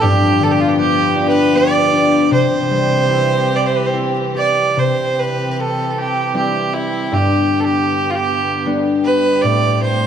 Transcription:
Already playing: harp C4 E4
0.02 harp G2, string section F3 B3 G4, fiddle G4
0.40 harp D3, fiddle A4
0.51 fiddle G4
0.60 fiddle F4
0.69 fiddle G4
0.76 harp B3, fiddle G4
1.16 harp D4
1.29 fiddle B4
1.54 harp B3, fiddle D5
1.92 harp D4
2.31 harp C3, string section E3 C4 G4, fiddle C5
2.70 harp G3
3.10 harp E4
3.51 harp G4
3.56 fiddle D5
3.66 fiddle C5
3.76 fiddle B4
3.86 fiddle C5
3.93 harp E4
4.35 harp G4, fiddle D5
4.74 harp C3, string section E3 C4 G4
4.79 fiddle C5
5.20 fiddle B4
5.51 fiddle B4
5.60 fiddle A4
5.90 fiddle A4
5.98 fiddle G4
6.34 harp G3 C4 E4, fiddle G4
6.74 fiddle E4
7.10 harp G2, string section D3 B3, fiddle G4
7.60 fiddle A4
7.65 fiddle G4
8.10 fiddle F4
8.15 fiddle G4
8.66 harp G3 B3 D4
9.05 fiddle B4
9.41 harp A2, string section C3 A3, fiddle D5
9.82 fiddle C5

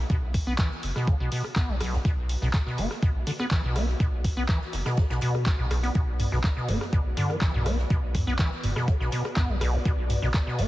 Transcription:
Already playing: ambient pad B3 F#4 B4
0.01 ambient pad D5
0.10 analog synth bass B1, acid bass B2, kick, closed hi-hat
0.34 kick, closed hi-hat, open hi-hat
0.47 analog synth bass B1, acid bass B3
0.58 acid bass E3, kick, snare, clap, closed hi-hat
0.71 snare
0.83 analog synth bass F#1, closed hi-hat, open hi-hat
0.96 acid bass B2, cross-stick, snare
1.07 acid bass D3, kick, closed hi-hat
1.20 analog synth bass B1, acid bass B2
1.32 acid bass B2, closed hi-hat, open hi-hat
1.44 cross-stick, closed hi-hat
1.56 acid bass B3, kick, snare, clap, closed hi-hat
1.69 analog synth bass B1, acid bass F#3
1.81 acid bass B1, cross-stick, closed hi-hat, open hi-hat
1.93 acid bass B2, snare
2.05 analog synth bass B1, acid bass B2, kick, closed hi-hat
2.29 closed hi-hat, open hi-hat
2.42 analog synth bass B1, acid bass B2, snare
2.53 acid bass D3, kick, snare, clap, closed hi-hat
2.66 acid bass B2, snare
2.78 analog synth bass F#1, acid bass B3, closed hi-hat, open hi-hat
2.90 cross-stick, snare
3.03 acid bass B2, kick, closed hi-hat
3.15 analog synth bass B1
3.27 acid bass D3, closed hi-hat, open hi-hat
3.39 acid bass B3, cross-stick, closed hi-hat
3.51 acid bass E3, kick, snare, clap, closed hi-hat
3.64 analog synth bass B1, acid bass B2
3.76 acid bass B3, cross-stick, snare, closed hi-hat, open hi-hat
3.88 snare
4.00 analog synth bass B1, acid bass B2, kick, closed hi-hat
4.24 kick, closed hi-hat, open hi-hat
4.37 analog synth bass B1, acid bass B3
4.48 acid bass E3, kick, snare, clap, closed hi-hat
4.61 snare
4.73 analog synth bass F#1, snare, closed hi-hat, open hi-hat
4.86 acid bass B2, cross-stick, snare, closed hi-hat
4.97 acid bass D3, kick, snare, closed hi-hat
5.10 analog synth bass B1, acid bass B2, snare, closed hi-hat
5.21 acid bass B2, closed hi-hat, open hi-hat
5.35 cross-stick, closed hi-hat
5.46 acid bass A3, kick, snare, clap, closed hi-hat
5.59 analog synth bass B1, acid bass B2
5.71 acid bass B1, cross-stick, closed hi-hat, open hi-hat
5.83 acid bass B3, snare, open hi-hat
5.95 analog synth bass B1, acid bass B2, kick, closed hi-hat
6.20 closed hi-hat, mid tom, open hi-hat
6.32 analog synth bass B1, acid bass B2, snare
6.44 acid bass D3, kick, snare, clap, closed hi-hat
6.57 acid bass B2, snare
6.68 analog synth bass F#1, acid bass B3, closed hi-hat, mid tom, open hi-hat
6.81 cross-stick, snare
6.93 acid bass B2, kick, closed hi-hat
7.05 analog synth bass B1
7.17 acid bass D3, closed hi-hat, mid tom, open hi-hat
7.30 acid bass E3, cross-stick, closed hi-hat
7.41 acid bass E3, kick, snare, clap, closed hi-hat
7.54 analog synth bass B1, acid bass B2, mid tom
7.66 acid bass B3, cross-stick, snare, closed hi-hat, open hi-hat
7.78 snare
7.90 analog synth bass B1, acid bass B2, kick, closed hi-hat
8.14 kick, closed hi-hat, mid tom, open hi-hat
8.27 analog synth bass B1, acid bass B3
8.39 acid bass E3, kick, snare, clap, closed hi-hat
8.51 snare
8.64 analog synth bass F#1, closed hi-hat, mid tom, open hi-hat
8.76 acid bass B2, cross-stick, snare
8.88 acid bass D3, kick, closed hi-hat
9.00 analog synth bass B1, acid bass B2, snare
9.12 acid bass B2, closed hi-hat, open hi-hat
9.25 cross-stick, closed hi-hat
9.36 acid bass B3, kick, snare, clap, closed hi-hat, mid tom
9.49 analog synth bass B1, acid bass F#3
9.61 acid bass B1, cross-stick, closed hi-hat, open hi-hat
9.74 acid bass B2
9.85 analog synth bass B1, acid bass B2, kick, closed hi-hat
10.10 closed hi-hat, mid tom, open hi-hat
10.22 analog synth bass B1, acid bass B2, snare
10.34 acid bass D3, kick, snare, clap, closed hi-hat
10.47 acid bass B2, snare
10.59 analog synth bass F#1, acid bass B3, closed hi-hat, mid tom, open hi-hat

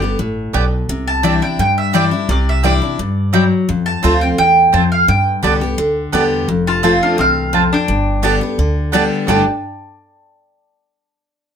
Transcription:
Already playing: upright bass G1, steel-string acoustic guitar G2, mandolin D5
0.02 steel-string acoustic guitar B3 G4
0.19 upright bass A1, steel-string acoustic guitar A2
0.53 upright bass B1, steel-string acoustic guitar B2, mandolin B3 G4 D5 G5
0.89 upright bass C2, steel-string acoustic guitar C3
1.07 mandolin A5
1.23 steel-string acoustic guitar E3 G3 D4 E4, mandolin C4 E4 D5 G5
1.42 steel-string acoustic guitar D4 E4, mandolin G5
1.59 upright bass G2, steel-string acoustic guitar G2, mandolin G5
1.78 mandolin E5
1.93 steel-string acoustic guitar E3 G3 D4 E4, mandolin C4 E4 D5 G5
2.11 steel-string acoustic guitar D4 E4
2.29 upright bass C2, steel-string acoustic guitar C3, mandolin D5
2.49 mandolin E5
2.63 steel-string acoustic guitar E3 G3 D4 E4, mandolin C4 E4 D5 G5
2.82 steel-string acoustic guitar D4 E4
2.99 upright bass G2, steel-string acoustic guitar G2
3.33 steel-string acoustic guitar F#3, mandolin C4 E4 D5 G5
3.69 steel-string acoustic guitar F2, upright bass F2
3.86 mandolin A5
4.03 upright bass D2, steel-string acoustic guitar F3 A3 C4 F4, mandolin C4 F4 C5 A5
4.21 steel-string acoustic guitar C4 F4, mandolin G5
4.38 steel-string acoustic guitar E2, upright bass E2, mandolin G5
4.72 upright bass F2, steel-string acoustic guitar F2, mandolin C4 F4 C5 A5
4.92 mandolin F5
5.08 upright bass G2, steel-string acoustic guitar G2, mandolin G5
5.43 upright bass C2, steel-string acoustic guitar D3 G3 B3 G4, mandolin B3 G4 D5 A5
5.61 steel-string acoustic guitar B3 G4
5.78 upright bass D2, steel-string acoustic guitar D3
6.12 upright bass E2, steel-string acoustic guitar D3 G3 B3 G4, mandolin B3 G4 D5 A5
6.48 upright bass F1, steel-string acoustic guitar F2
6.67 resonator guitar played with a steel bar F4, mandolin A5
6.83 steel-string acoustic guitar F3 A3 C4 F4, mandolin C4 F4 C5 A5
7.03 resonator guitar played with a steel bar D4, mandolin F5
7.18 upright bass C2, steel-string acoustic guitar E2, resonator guitar played with a steel bar C4, mandolin F5
7.53 steel-string acoustic guitar F2, mandolin C4 F4 C5 A5
7.73 resonator guitar played with a steel bar D4, mandolin G5
7.88 upright bass G1, steel-string acoustic guitar G2
8.22 steel-string acoustic guitar D3 G3 B3 G4, mandolin B3 G4 D5 A5
8.41 steel-string acoustic guitar B3 G4
8.58 upright bass D2, steel-string acoustic guitar D3
8.92 steel-string acoustic guitar D3 G3 B3 G4, mandolin B3 G4 D5 A5
9.27 upright bass G1, steel-string acoustic guitar G2 A2 D3 G3 B3 G4, mandolin B3 G4 D5 G5 A5, resonator guitar played with a steel bar D4

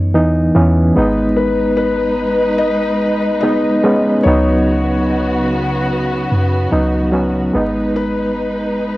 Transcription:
Already playing: 808-style bass F#2, reed electric piano D#4
0.14 808-style bass E2, reed electric piano E3 B3 D#4
0.55 808-style bass E2, reed electric piano E3 B3 C#4
0.96 808-style bass G#1, reed electric piano G#3 B3 D#4, string section G#3 D#4 B4
1.37 felt piano B4
1.77 felt piano B4
2.58 felt piano D#5
3.41 reed electric piano G#3 B3 D#4, felt piano D#5
3.84 reed electric piano G#3 B3 C#4
4.23 808-style bass C#2, string section C#3 B3 F#4, reed electric piano F#3 B3, felt piano C#5
4.28 reed electric piano D#4
6.32 808-style bass F#2
6.72 808-style bass C#2, reed electric piano F#3 B3 D#4
7.12 reed electric piano F#3 B3 C#4
7.53 808-style bass G#1, reed electric piano G#3 B3 D#4, string section G#3 D#4 B4
7.96 felt piano B4

